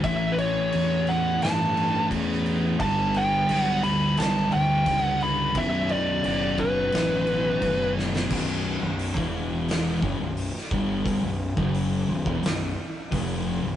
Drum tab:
CC |x-x-x-x-x-x-x-x-|x-x-x-x-x-x-x-x-|x-x-x-x-x-x-x---|x---------------|
HH |----------------|----------------|----------------|----o---o---o---|
SD |--------o----o--|--------o-------|--------o-----oo|--------o----o--|
BD |o-----------o---|o-----------o---|o-----o-----o---|o----o----o---o-|

CC |----------------|
HH |o---o---o---o---|
SD |--------o-------|
BD |o--o---o----o---|